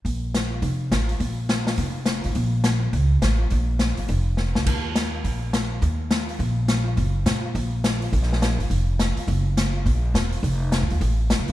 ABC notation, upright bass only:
X:1
M:4/4
L:1/8
Q:"Swing" 1/4=208
K:Bbm
V:1 name="Upright bass" clef=bass
B,,,4 F,,,2 =A,,,2 | B,,,4 F,,,3 A,,, | B,,,4 D,,2 =A,,,2 | B,,,3 =A,,, F,,,3 D,, |
E,,4 B,,,4 | E,,4 B,,,4 | G,,,2 B,,2 B,,,4 | B,,,3 A,,, F,,,3 z |
G,,,4 B,,,2 _F,,,2 | F,,,2- (3F,,, C,, E,, =A,,,2- (3A,,, C,, _C,, |]